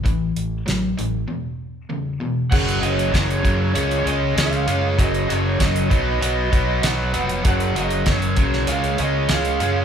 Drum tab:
CC |----------------|x---------------|----------------|----------------|
HH |x-x-x-x---------|-xxxxxx-xxx-xxx-|xxx-xxx-x-x-x-xx|xxxxxxx-xxx-xxx-|
SD |----o-----------|----o-------o---|----o-------o---|----o--o----o---|
BD |o---------------|o---o-o---------|o---o-o---o-----|o---o-o---------|